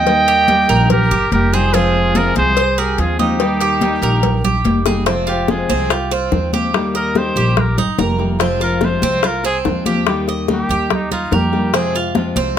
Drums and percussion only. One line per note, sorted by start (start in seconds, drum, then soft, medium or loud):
0.06 cowbell loud
0.06 high conga soft
0.27 cowbell medium
0.27 high conga soft
0.48 cowbell medium
0.48 high conga medium
0.69 cowbell medium
0.69 high conga soft
0.90 cowbell loud
0.90 high conga soft
0.90 low conga medium
1.11 high conga soft
1.11 low conga medium
1.32 cowbell medium
1.32 high conga medium
1.74 cowbell loud
1.94 high conga soft
2.15 cowbell medium
2.15 high conga loud
2.36 cowbell medium
2.36 high conga medium
2.57 cowbell loud
2.57 high conga soft
2.78 high conga soft
2.98 cowbell medium
2.98 high conga soft
3.19 high conga medium
3.40 cowbell loud
3.40 high conga soft
3.61 cowbell medium
3.61 high conga soft
3.81 cowbell medium
3.81 high conga loud
4.03 cowbell medium
4.03 high conga soft
4.23 cowbell loud
4.23 high conga soft
4.23 low conga medium
4.44 high conga soft
4.44 low conga medium
4.65 cowbell medium
4.65 high conga medium
4.86 high bongo medium
4.86 high conga medium
5.07 high bongo medium
5.28 high bongo soft
5.28 high conga soft
5.48 high bongo medium
5.48 high conga medium
5.70 high conga medium
5.90 high bongo medium
5.90 high conga soft
6.11 high bongo soft
6.11 high conga soft
6.32 high bongo soft
6.32 low bongo medium
6.32 high conga soft
6.53 high bongo soft
6.53 high conga medium
6.74 high bongo medium
6.74 high conga soft
6.95 high bongo soft
6.95 high conga soft
7.15 high bongo medium
7.15 high conga medium
7.36 high conga soft
7.57 high bongo medium
7.57 high conga soft
7.57 low conga medium
7.78 high bongo soft
7.78 high conga soft
7.78 low conga medium
7.98 high bongo soft
7.98 low bongo medium
7.98 high conga medium
8.19 high bongo soft
8.40 high bongo medium
8.60 high bongo soft
8.60 high conga soft
8.81 high bongo medium
8.81 high conga medium
9.02 high conga medium
9.23 high bongo medium
9.23 high conga soft
9.44 high bongo soft
9.44 high conga soft
9.65 high bongo soft
9.65 low bongo medium
9.65 high conga soft
9.86 high bongo soft
9.86 high conga medium
10.07 high bongo medium
10.28 high bongo soft
10.28 high conga soft
10.48 high bongo medium
10.48 high conga loud
10.70 high conga soft
10.90 high bongo medium
10.90 high conga soft
10.90 low conga medium
11.11 high bongo soft
11.11 high conga soft
11.11 low conga medium
11.32 high bongo soft
11.32 low bongo medium
11.32 high conga medium
11.53 high bongo soft
11.74 high bongo medium
11.74 high conga soft
11.95 high bongo soft
11.95 high conga soft
12.15 high bongo medium
12.15 high conga loud
12.36 high conga medium